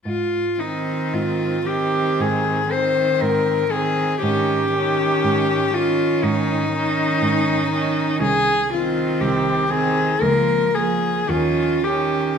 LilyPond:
<<
  \new Staff \with { instrumentName = "Cello" } { \time 4/4 \key aes \major \tempo 4 = 59 f'8 ees'8 f'8 g'8 aes'8 c''8 bes'8 aes'8 | g'4. f'8 ees'2 | aes'8 f'8 g'8 aes'8 bes'8 aes'8 f'8 g'8 | }
  \new Staff \with { instrumentName = "Cello" } { \time 4/4 \key aes \major r8 c'4 c'4 c'4 c'8 | des'8 des'4 des'4 des'4 des'8 | r8 c'4 c'8 bes8 bes8 des'8 des'8 | }
  \new Staff \with { instrumentName = "Cello" } { \clef bass \time 4/4 \key aes \major r8 ees4 ees4 ees4 ees8 | ees8 ees4 ees4 ees4 ees8 | r8 ees4 ees8 f8 f8 ees8 ees8 | }
  \new Staff \with { instrumentName = "Cello" } { \clef bass \time 4/4 \key aes \major aes,4 aes,4 aes,4 aes,4 | aes,4 aes,4 aes,4 aes,4 | c,4 c,4 des,4 ees,4 | }
>>